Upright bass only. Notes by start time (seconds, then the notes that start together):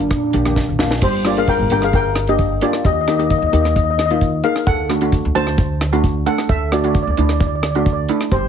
0.11 A#2
0.34 A#1
0.69 A#1
1.02 G1
1.59 G1
1.71 G1
2.85 D#2
3.42 D#2
3.53 D#2
4.67 D2
5.25 D2
5.36 D2
6.49 D2
7.07 D2
7.18 D2
8.32 G1